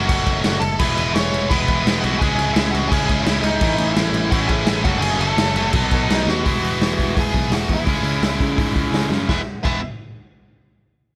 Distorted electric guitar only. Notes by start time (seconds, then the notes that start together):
Already playing: F#3 A3 C#4 F#4
0.79 E3 G#3 B3 E4
1.50 E3 G#3 B3 E4
2.21 C#3 G#3 C#4 E4
2.91 C#3 G#3 C#4 E4
3.61 A2 E3 A3 C#4 E4
4.32 A2 E3 A3 C#4 E4
4.84 F#2 C#3 F#3 A3 C#4
5.56 F#2 C#3 F#3 A3 C#4
5.74 B2 F#3 B3 D#4
6.44 E3 G#3 B3 E4
7.87 C#3 G#3 C#4 E4
9.29 E3 G#3 B3 E4
9.64 E3 G#3 B3 E4